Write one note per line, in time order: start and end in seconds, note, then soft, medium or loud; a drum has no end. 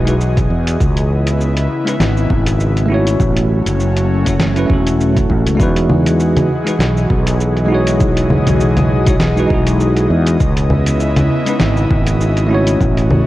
0.00 0.47 B1 medium
0.00 0.76 E3 medium
0.00 0.76 F#4 medium
0.00 0.76 G#4 medium
0.00 3.16 D#5 medium
0.04 0.12 G#3 medium
0.04 0.13 D#4 medium
0.04 0.13 E4 medium
0.04 0.14 F#4 medium
0.04 closed hi-hat medium
0.04 cabasa medium
0.08 0.14 B4 medium
0.21 cabasa medium
0.37 kick loud
0.37 closed hi-hat soft
0.37 cabasa soft
0.50 0.76 E2 medium
0.67 closed hi-hat medium
0.67 cabasa medium
0.80 1.67 C#2 medium
0.80 3.18 C#3 medium
0.80 3.17 B3 medium
0.80 3.18 E4 medium
0.80 kick loud
0.80 cabasa medium
0.97 closed hi-hat soft
0.97 cabasa soft
1.27 closed hi-hat medium
1.27 cabasa medium
1.41 cabasa medium
1.57 closed hi-hat soft
1.57 cabasa soft
1.85 1.92 G#3 medium
1.85 1.93 C#4 medium
1.85 1.93 D#4 medium
1.85 1.94 E4 medium
1.85 closed hi-hat medium
1.85 cabasa medium
1.89 1.95 B4 medium
2.00 2.26 G#1 medium
2.00 snare medium
2.00 cabasa soft
2.17 cabasa soft
2.30 3.17 G#1 medium
2.30 kick loud
2.46 closed hi-hat medium
2.46 cabasa medium
2.60 cabasa medium
2.77 closed hi-hat soft
2.77 cabasa soft
2.86 4.21 A3 loud
2.86 4.22 C#4 medium
2.90 4.23 E4 medium
2.90 4.24 F#4 loud
2.94 4.25 C#5 loud
3.07 closed hi-hat medium
3.07 cabasa medium
3.20 3.63 A1 loud
3.20 5.58 F#3 medium
3.20 5.58 A3 medium
3.20 5.58 C#4 medium
3.20 kick loud
3.20 cabasa medium
3.37 closed hi-hat soft
3.37 cabasa soft
3.66 4.66 F#1 medium
3.66 closed hi-hat medium
3.66 cabasa medium
3.80 cabasa medium
3.97 closed hi-hat soft
3.97 cabasa soft
4.25 4.32 A3 medium
4.25 4.33 C#4 medium
4.25 4.33 E4 medium
4.25 4.34 F#4 medium
4.25 4.34 C#5 medium
4.25 kick medium
4.25 closed hi-hat medium
4.25 cabasa medium
4.40 snare medium
4.40 cabasa medium
4.54 4.64 A3 medium
4.54 4.66 C#4 medium
4.54 4.67 E4 medium
4.54 4.68 F#4 medium
4.54 closed hi-hat soft
4.54 cabasa soft
4.59 4.68 B4 medium
4.66 5.56 A3 medium
4.66 5.57 C#4 medium
4.66 5.58 E4 medium
4.70 5.27 E1 medium
4.70 5.59 F#4 medium
4.70 5.60 A4 medium
4.70 kick loud
4.87 closed hi-hat medium
4.87 cabasa medium
5.01 cabasa medium
5.16 kick medium
5.16 closed hi-hat soft
5.16 cabasa soft
5.30 5.44 A1 loud
5.30 kick medium
5.46 5.58 C#2 medium
5.46 closed hi-hat medium
5.46 cabasa medium
5.55 6.48 G#3 loud
5.55 6.49 D#4 medium
5.55 6.50 E4 medium
5.60 6.47 E2 medium
5.60 10.36 E3 medium
5.60 10.36 F#4 medium
5.60 6.51 F#4 medium
5.60 10.36 G#4 medium
5.60 6.52 B4 loud
5.60 12.76 D#5 medium
5.60 kick loud
5.60 cabasa medium
5.76 closed hi-hat soft
5.76 cabasa soft
5.90 low conga medium
6.06 closed hi-hat medium
6.06 cabasa medium
6.20 cabasa medium
6.37 closed hi-hat soft
6.37 low conga medium
6.37 cabasa soft
6.65 6.72 G#3 medium
6.65 6.73 D#4 medium
6.65 6.73 E4 medium
6.65 6.74 F#4 medium
6.65 6.74 B4 medium
6.65 closed hi-hat medium
6.65 cabasa medium
6.79 7.05 B1 medium
6.79 snare medium
6.79 cabasa medium
6.97 cabasa soft
7.10 8.43 B1 loud
7.10 kick loud
7.27 closed hi-hat medium
7.27 cabasa medium
7.40 cabasa medium
7.57 closed hi-hat soft
7.57 cabasa soft
7.66 9.01 G#3 loud
7.66 9.02 D#4 medium
7.70 9.03 E4 medium
7.70 9.04 F#4 loud
7.74 9.05 C#5 loud
7.87 closed hi-hat medium
7.87 cabasa medium
8.00 kick loud
8.00 cabasa medium
8.17 closed hi-hat soft
8.17 cabasa soft
8.30 low conga medium
8.47 9.47 B1 medium
8.47 closed hi-hat medium
8.47 low conga medium
8.47 cabasa medium
8.60 cabasa medium
8.77 closed hi-hat soft
8.77 low conga medium
8.77 cabasa soft
9.05 9.13 G#3 medium
9.05 9.13 D#4 medium
9.05 9.14 E4 medium
9.05 9.14 F#4 medium
9.05 kick loud
9.05 closed hi-hat medium
9.05 cabasa medium
9.09 9.15 C#5 medium
9.20 snare medium
9.20 cabasa medium
9.36 9.45 G#3 medium
9.36 9.47 D#4 medium
9.36 9.48 E4 medium
9.36 9.49 F#4 medium
9.36 9.49 B4 loud
9.36 cabasa soft
9.47 10.07 B1 medium
9.47 10.37 G#3 medium
9.47 10.38 D#4 medium
9.47 10.39 E4 medium
9.47 kick loud
9.53 10.40 F#4 medium
9.53 10.41 G#4 medium
9.67 closed hi-hat medium
9.67 cabasa medium
9.80 cabasa medium
9.97 closed hi-hat soft
9.97 cabasa soft
10.10 10.36 E2 loud
10.27 closed hi-hat medium
10.27 cabasa medium
10.39 11.27 C#2 loud
10.39 12.77 C#3 medium
10.39 12.78 B3 medium
10.39 12.77 E4 medium
10.39 kick loud
10.39 cabasa medium
10.57 closed hi-hat soft
10.57 cabasa soft
10.70 low conga medium
10.86 closed hi-hat medium
10.86 cabasa medium
11.00 cabasa medium
11.17 closed hi-hat soft
11.17 low conga medium
11.17 cabasa soft
11.46 11.53 G#3 medium
11.46 11.53 C#4 medium
11.46 11.54 D#4 medium
11.46 11.54 E4 medium
11.46 closed hi-hat medium
11.46 cabasa medium
11.50 11.55 B4 medium
11.60 11.86 G#1 medium
11.60 snare medium
11.60 cabasa medium
11.77 cabasa soft
11.90 12.77 G#1 loud
11.90 kick loud
12.06 closed hi-hat medium
12.06 cabasa medium
12.21 cabasa medium
12.37 closed hi-hat soft
12.37 cabasa soft
12.47 13.27 A3 loud
12.47 13.27 C#4 medium
12.47 13.27 E4 loud
12.53 13.27 F#4 medium
12.53 13.27 C#5 loud
12.67 closed hi-hat medium
12.67 cabasa medium
12.79 13.23 A1 loud
12.79 13.27 A3 medium
12.79 13.27 C#4 medium
12.79 13.27 F#4 medium
12.79 kick loud
12.79 cabasa medium
12.97 closed hi-hat soft
12.97 cabasa soft
13.10 low conga medium